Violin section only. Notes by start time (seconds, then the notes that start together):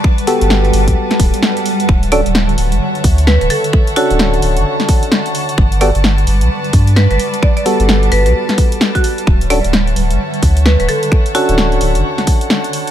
Already playing: B4 D5 F#5 A5
1.89 C#5 E5 A5
5.58 B4 D5
9.27 C#5 E5 F#5